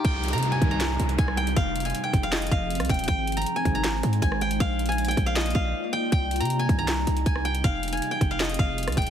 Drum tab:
HH |x-----------x--x--x--x--x-----------x-----------x-----------x-----x-----x-----------x-----x-----|x-----------x--x--x--x--x-----------x-----------x--x--x--x--------------x--x--x--x--x--x--x--x--|x-----------x--x--x--x--x-----------x-----------x-----------x-----x-----x-----------x-----x-----|x-----------x---x---x---x---x---x---x-----------x--x--x--x--------------------------------------|
CP |------------------------------------------------x-----------------------------------------------|------------------------------------------------x-----------------------------------------------|------------------------------------------------x-----------------------------------------------|------------------------------------------------x-----------------------------------------------|
SD |------------------------------------------------o-----------------------------r-----------------|------------------------------------------------o-----------------------------r-----------------|------------------------------------------------o-----------------------------r-----------------|------------------------------------------------o-----------------------------------------------|
BD |o-----------------------------------o-----------------------------------o-----------------------|o-----------------------------------o-----------------------o-----------------------o-----------|o-----------------------------------o-----------------------------------o-----------------------|o-----------------------------------o-----------------------o-----------------------------------|

HH |x-----------x--x--x--x--x-----------x-----------x-----------x-----x-----x-----------x-----x-----|x-----------x--x--x--x--x-----------x-----------x--x--x--x--------------x--x--x--x--x--x--x-----|
CP |------------------------------------------------x-----------------------------------------------|------------------------------------------------x-----------------------------------------------|
SD |------------------------------------------------o-----------------------------r-----------------|------------------------------------------------o-----------------------------r-----------------|
BD |o-----------------------------------o-----------------------------------o-----------------------|o-----------------------------------o-----------------------o-----------------------o-----------|